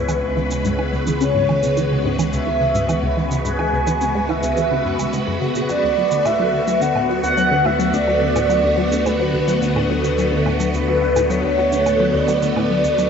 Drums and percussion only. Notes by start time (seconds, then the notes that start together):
0.09 cabasa, low woodblock
0.51 cabasa
0.65 cabasa
0.79 low woodblock
1.07 cabasa
1.21 cabasa
1.49 low woodblock
1.63 cabasa
1.77 cabasa
2.19 cabasa, low woodblock
2.33 cabasa
2.75 cabasa
2.89 cabasa, low woodblock
3.31 cabasa
3.45 cabasa
3.59 low woodblock
3.87 cabasa
4.01 cabasa
4.29 low woodblock
4.43 cabasa
4.57 cabasa
4.99 cabasa, low woodblock
5.13 cabasa
5.55 cabasa
5.69 cabasa
6.11 cabasa
6.25 cabasa, low woodblock
6.67 cabasa
6.82 cabasa
6.96 low woodblock
7.24 cabasa
7.38 cabasa
7.66 low woodblock
7.80 cabasa
7.94 cabasa
8.36 cabasa, low woodblock
8.50 cabasa
8.92 cabasa
9.06 cabasa, low woodblock
9.48 cabasa
9.62 cabasa
9.76 low woodblock
10.04 cabasa
10.18 cabasa
10.46 low woodblock
10.60 cabasa
10.74 cabasa
11.16 cabasa, low woodblock
11.30 cabasa
11.72 cabasa
11.86 cabasa, low woodblock
12.28 cabasa
12.42 cabasa
12.56 low woodblock
12.84 cabasa
12.98 cabasa